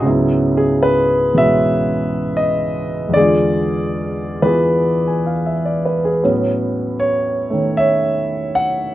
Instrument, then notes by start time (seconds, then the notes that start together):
grand piano
0.02 C#2 G#2 C#3 F#3
0.06 B3 E4
0.57 G#4
0.83 B4
1.33 B2 E3 G#3 C#4 F#4
1.38 E5
2.37 D#5
3.09 E2 D3
3.14 G#3 G#4 D5
3.20 F4
4.42 E3 B3 F4 G#4 B4
5.07 G#5
5.26 F5
5.46 E5
5.65 D5
5.85 B4
6.05 G#4
6.24 A2 F#3 B3 C#4
7.00 C#5
7.50 D#3 A3 C#4
7.77 C#5 E5
8.55 F#5